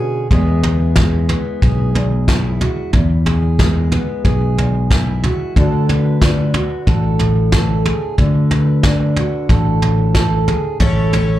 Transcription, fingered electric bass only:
0.31 1.33 E2 medium
1.62 2.64 B1 medium
2.94 3.96 E2 medium
4.25 5.27 B1 medium
5.57 6.58 D2 medium
6.87 7.89 A1 medium
8.18 9.20 D2 medium
9.49 10.51 A1 medium
10.81 11.39 A1 medium

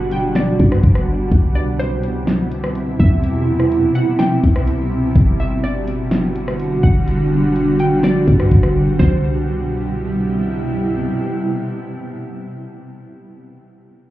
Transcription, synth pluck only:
0.12 0.35 G5 medium
0.36 0.81 D5 medium
1.55 1.78 D5 medium
1.79 2.25 C5 medium
3.00 3.22 E5 medium
3.95 4.18 F#5 medium
4.19 5.11 G5 medium
5.40 5.63 E5 medium
5.64 6.09 D5 medium
6.83 7.06 F#5 medium
7.80 8.03 G5 medium
8.04 8.49 D5 medium
8.99 10.39 C5 medium

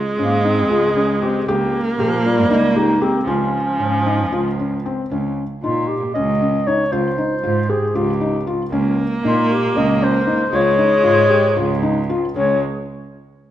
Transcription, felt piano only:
0.18 0.33 C#4 medium
0.45 0.59 D#4 medium
0.70 0.84 F4 medium
0.96 1.10 C#4 medium
1.22 1.36 C4 medium
1.48 1.77 G4 medium
1.99 2.14 G4 medium
2.26 2.40 F4 medium
2.50 2.65 D#4 medium
2.76 2.91 G4 medium
3.02 3.16 G4 medium
3.27 3.57 F4 medium
3.80 3.95 C#4 medium
4.06 4.21 D#4 medium
4.32 4.47 F4 medium
4.59 4.74 C#4 medium
4.86 5.00 C4 medium
5.11 5.41 C#4 medium
5.64 5.93 D#4 medium
6.15 6.30 C#4 medium
6.41 6.56 C#4 medium
6.67 6.82 D#4 medium
6.92 7.07 F4 medium
7.18 7.33 D#4 medium
7.43 7.58 F4 medium
7.69 7.84 G4 medium
7.95 8.10 F4 medium
8.21 8.36 D#4 medium
8.47 8.62 F4 medium
8.72 9.02 C#4 medium
9.25 9.54 D#4 medium
9.76 9.90 C#4 medium
10.02 10.16 C#4 medium
10.27 10.41 D#4 medium
10.53 10.67 F4 medium
10.78 10.93 D#4 medium
11.04 11.19 F4 medium
11.30 11.45 G4 medium
11.57 11.72 F4 medium
11.83 11.98 D#4 medium
12.10 12.24 F4 medium
12.36 12.60 C#4 medium

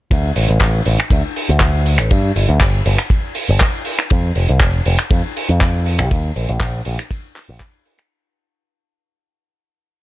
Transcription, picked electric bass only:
0.11 0.30 D2 medium
0.36 0.46 A1 medium
0.49 0.58 A1 medium
0.86 0.96 A1 medium
1.11 1.21 D2 medium
1.49 1.99 D2 medium
1.99 2.08 A1 loud
2.11 2.30 G2 medium
2.36 2.46 G1 medium
2.49 2.58 D2 medium
2.61 2.80 G1 medium
2.86 2.96 G1 medium
3.49 3.58 G1 loud
4.11 4.30 F2 loud
4.36 4.46 F1 medium
4.49 4.58 C2 loud
4.86 4.96 F1 loud
5.11 5.21 F2 medium
5.49 6.01 F2 medium
5.99 6.08 C2 loud
6.11 6.30 D#2 loud
6.36 6.46 A#1 medium
6.49 6.58 A#1 loud
6.60 6.80 A#1 medium
6.86 6.96 A#1 loud
7.49 7.58 A#1 loud

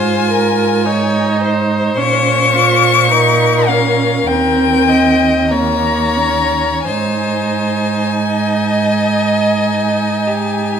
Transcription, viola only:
0.00 0.88 F4 soft
0.87 1.99 D#4 medium
1.97 2.55 C#4 medium
2.54 3.10 F4 medium
3.11 3.70 D#4 medium
3.69 4.30 C#4 medium
4.28 5.52 C4 soft
5.50 6.19 A#3 soft
6.17 6.87 C#4 soft
6.86 10.80 D#4 soft

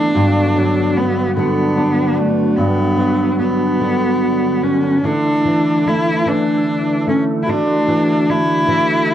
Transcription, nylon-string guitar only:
0.00 1.22 D3 medium
0.00 0.23 E3 medium
0.00 0.23 A3 soft
0.00 1.77 D4 soft
0.15 2.56 G2 medium
0.56 2.96 F#3 soft
0.96 2.16 B3 soft
1.37 3.80 D3 medium
1.77 5.27 D4 soft
2.18 3.38 B3 soft
2.57 5.02 G2 medium
2.97 5.10 F#3 soft
3.39 4.61 B3 soft
3.80 5.03 D3 medium
4.63 5.11 B3 soft
5.04 7.47 D3 medium
5.44 6.25 E3 soft
5.85 7.06 A3 soft
6.25 7.87 E3 medium
7.07 8.29 A3 soft
7.48 9.14 D3 medium
7.87 8.67 E3 soft
8.29 9.14 A3 soft
8.67 9.14 E3 medium

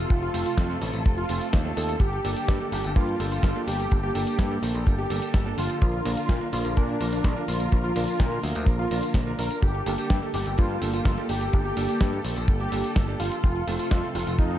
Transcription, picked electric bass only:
0.10 0.28 F1 loud
0.34 0.43 F1 medium
0.58 0.76 F2 loud
0.82 0.91 A1 loud
0.94 1.03 A1 medium
1.06 1.24 F1 medium
1.29 1.38 F1 medium
1.54 1.71 D#2 medium
1.77 1.95 D#2 medium
2.00 2.18 G1 loud
2.24 2.33 G1 medium
2.48 2.57 G2 medium
2.72 2.81 G1 loud
2.84 2.93 G1 medium
2.96 3.14 G2 medium
3.20 3.38 G1 medium
3.43 3.52 G1 loud
3.68 3.85 G1 medium
3.92 4.09 G1 loud
4.15 4.24 G1 medium
4.39 4.57 G2 loud
4.63 4.72 A#1 loud
4.74 4.83 A#1 medium
4.87 5.05 G1 medium
5.10 5.19 G1 medium
5.34 5.52 G1 medium
5.58 5.67 G1 medium
5.82 6.00 A#1 loud
6.05 6.14 A#1 medium
6.29 6.38 A#2 medium
6.53 6.62 A#1 loud
6.65 6.74 A#1 medium
6.77 6.95 A#2 medium
7.01 7.19 A#1 medium
7.24 7.33 A#1 loud
7.48 7.66 A#1 medium
7.72 7.90 A#1 loud
7.96 8.05 A#1 medium
8.20 8.38 A#2 loud
8.44 8.53 D2 loud
8.55 8.64 D2 medium
8.66 8.85 A#1 medium
8.91 9.00 A#1 medium
9.14 9.33 A#1 medium
9.39 9.48 A#1 medium
9.63 9.81 G1 loud
9.86 9.95 G1 loud
10.10 10.19 G2 medium
10.34 10.43 G1 loud
10.46 10.55 G1 medium
10.59 10.76 G2 medium
10.82 11.00 G1 medium
11.05 11.14 G1 loud
11.29 11.47 G1 medium
11.53 11.71 G1 loud
11.77 11.86 G1 medium
12.01 12.19 G2 loud
12.25 12.34 A#1 loud
12.37 12.45 A#1 medium
12.48 12.66 G1 medium
12.72 12.81 G1 medium
12.96 13.14 G1 medium
13.20 13.29 G1 medium
13.44 13.62 F1 loud
13.67 13.76 F1 loud
13.92 14.00 F2 medium
14.15 14.24 F1 loud
14.27 14.36 F1 medium
14.39 14.57 F2 medium

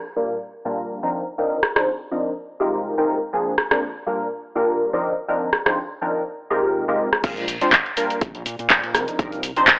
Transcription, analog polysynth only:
0.16 0.37 A#2 medium
0.16 0.37 G3 medium
0.16 0.37 A#3 medium
0.16 0.37 D4 medium
0.16 0.38 F4 medium
0.16 0.38 A#4 medium
0.65 1.00 A#2 medium
0.65 1.00 G3 medium
0.65 1.00 A#3 medium
0.65 1.00 D4 medium
0.65 1.00 F4 medium
0.65 1.00 A#4 loud
1.03 1.23 F3 medium
1.03 1.23 C4 medium
1.03 1.23 D4 medium
1.03 1.23 D#4 medium
1.03 1.23 A#4 loud
1.38 1.59 F3 medium
1.38 1.59 C4 medium
1.38 1.59 D4 medium
1.38 1.59 D#4 medium
1.38 1.60 A#4 loud
1.76 1.88 F3 medium
1.76 1.88 C4 medium
1.76 1.88 D4 medium
1.76 1.88 D#4 medium
1.76 1.88 C5 loud
2.11 2.32 F3 medium
2.11 2.32 C4 medium
2.11 2.33 D4 medium
2.11 2.33 D#4 medium
2.11 2.33 A#4 medium
2.60 2.95 C3 medium
2.60 2.95 G#3 medium
2.60 2.95 D#4 medium
2.60 2.95 F4 medium
2.60 2.95 G4 medium
2.60 2.95 A#4 loud
2.98 3.18 C3 medium
2.98 3.18 G#3 medium
2.98 3.18 D#4 medium
2.98 3.18 F4 medium
2.98 3.18 G4 medium
2.98 3.18 A#4 loud
3.33 3.54 F3 medium
3.33 3.54 A#3 medium
3.33 3.54 C4 medium
3.33 3.54 D4 medium
3.33 3.55 G#4 loud
3.71 3.83 F3 medium
3.71 3.83 A#3 medium
3.71 3.83 C4 medium
3.71 3.83 D4 medium
3.71 3.83 A#4 medium
4.06 4.27 A#2 medium
4.06 4.28 G3 medium
4.06 4.28 A#3 medium
4.06 4.28 D4 medium
4.06 4.28 F4 medium
4.06 4.28 A#4 medium
4.55 4.90 A#2 medium
4.55 4.90 G3 medium
4.55 4.90 A#3 medium
4.55 4.90 D4 medium
4.55 4.90 F4 medium
4.55 4.90 A#4 loud
4.93 5.13 F3 medium
4.93 5.13 C4 medium
4.93 5.13 D4 medium
4.93 5.14 D#4 medium
4.93 5.14 A#4 loud
5.28 5.49 F3 medium
5.28 5.50 C4 medium
5.28 5.50 D4 medium
5.28 5.50 D#4 medium
5.28 5.50 A#4 loud
5.66 5.78 F3 medium
5.66 5.78 C4 medium
5.66 5.78 D4 medium
5.66 5.78 D#4 medium
5.66 5.78 C5 loud
6.01 6.23 F3 medium
6.01 6.23 C4 medium
6.01 6.23 D4 medium
6.01 6.23 D#4 medium
6.01 6.23 A#4 medium
6.50 6.85 C3 medium
6.50 6.85 G#3 medium
6.50 6.85 D#4 medium
6.50 6.85 F4 medium
6.50 6.85 G4 medium
6.50 6.85 A#4 loud
6.88 7.08 C3 medium
6.88 7.08 G#3 medium
6.88 7.09 D#4 medium
6.88 7.09 F4 medium
6.88 7.09 G4 medium
6.88 7.09 A#4 loud
7.23 7.45 G#3 medium
7.23 7.45 C4 medium
7.23 7.45 D4 medium
7.23 7.45 F4 medium
7.23 7.45 A#4 loud
7.61 7.73 G#3 medium
7.61 7.73 C4 medium
7.61 7.73 D4 medium
7.61 7.73 F4 medium
7.61 7.74 C5 loud
7.97 8.18 G3 medium
7.97 8.18 A#3 medium
7.97 8.18 D4 medium
7.97 8.18 F4 medium
7.97 8.18 A#4 medium
8.70 9.16 F3 medium
8.70 9.16 C4 medium
8.70 9.16 D4 medium
8.70 9.16 D#4 medium
8.70 9.16 A#4 medium
9.19 9.40 F3 medium
9.19 9.40 C4 medium
9.19 9.40 D4 medium
9.19 9.40 D#4 medium
9.19 9.40 A#4 loud
9.57 9.68 F3 medium
9.57 9.68 C4 medium
9.57 9.69 D4 medium
9.57 9.69 D#4 medium
9.57 9.69 C5 loud

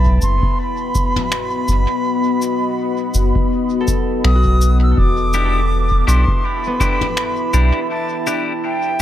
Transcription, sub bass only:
0.00 0.19 B1 loud
0.22 0.40 F#1 loud
1.68 1.87 F#1 loud
3.15 3.33 F#1 medium
4.24 4.95 B1 medium
4.98 6.04 E1 loud
6.08 6.26 B1 medium
7.54 7.72 B1 loud

